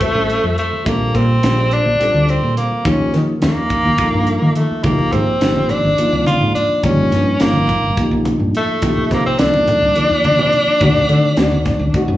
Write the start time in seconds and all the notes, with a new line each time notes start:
Already playing: A3
0.00 G3 C4 F4 C5, kick, closed hi-hat
0.15 A1
0.30 closed hi-hat
0.43 F2
0.58 A3, closed hi-hat
0.73 muted fretless electric bass stroke
0.85 A#1 G3 A#3 C4 F4 A4, kick, closed hi-hat
1.14 A#2 C4, kick, closed hi-hat
1.43 A#1 G3 C4 F4 G4, snare, closed hi-hat
1.71 D4, closed hi-hat
1.86 A#1
1.99 G3 C4 F4 A4, snare, closed hi-hat
2.14 D2
2.29 C4, closed hi-hat
2.42 A#2
2.57 A#3, closed hi-hat
2.71 muted fretless electric bass stroke
2.85 D#2 F3 A#3 C#4 D#4 G4, kick, closed hi-hat
3.14 D#3, snare, closed hi-hat
3.42 D#2 F3 A#3 D#4 F4, snare, closed hi-hat
3.70 kick, closed hi-hat
3.85 D#2
3.98 F3 A#3 D#4 A4, kick, closed hi-hat
4.14 G2
4.27 closed hi-hat
4.42 D#3
4.55 A3, closed hi-hat
4.71 muted fretless electric bass stroke
4.83 G#1 F3 A#3 D#4 G4, kick, closed hi-hat, high conga
4.99 low conga
5.12 G#2 C4, kick, closed hi-hat
5.41 G#1 F3 A#3 D#4 G4, snare, closed hi-hat
5.56 high conga
5.69 D4, closed hi-hat, low conga
5.85 G#1
5.98 F3 A#3 D#4 F4, closed hi-hat, low conga
6.13 C2
6.26 F4, closed hi-hat, high conga
6.40 G#2, low conga
6.55 D4, closed hi-hat, low conga
6.69 muted fretless electric bass stroke, low conga
6.83 G1 F3 A#3 C#4 D#4 G4, kick, closed hi-hat, high conga
7.12 G2, snare, closed hi-hat
7.40 G1 F3 A#3 D#4 F4, snare, closed hi-hat
7.53 high conga
7.67 kick, closed hi-hat, low conga
7.83 G1
7.97 F3 A#3 D#4 G4, kick, closed hi-hat
8.11 B1
8.25 closed hi-hat, high conga
8.39 G2, low conga
8.55 A3, closed hi-hat, low conga
8.68 muted fretless electric bass stroke, low conga
8.82 C2 F3 A#3 D#4 G4, kick, closed hi-hat, high conga
8.97 low conga
9.11 C3 A#3, kick, snare, closed hi-hat
9.26 C4
9.38 C2 D#3 F3 A#3 D4 A4, snare, closed hi-hat
9.54 high conga
9.67 closed hi-hat, low conga
9.82 C2
9.96 D#3 F3 A#3 A#4, muted fretless electric bass stroke, closed hi-hat, low conga
10.10 D#2
10.24 closed hi-hat, high conga
10.38 C3, low conga
10.53 closed hi-hat, low conga
10.66 muted fretless electric bass stroke, low conga
10.80 D2 D#3 A3 C4 F#4, kick, closed hi-hat, high conga, low conga
10.96 low conga
11.09 D3, closed hi-hat, low conga
11.37 D2 D#3 A3 C4 F#4, snare, closed hi-hat
11.52 high conga
11.65 kick, snare, closed hi-hat, low conga
11.79 D2, low conga
11.94 A3 C4 D#4 F#4, kick, closed hi-hat, low conga
12.08 F#2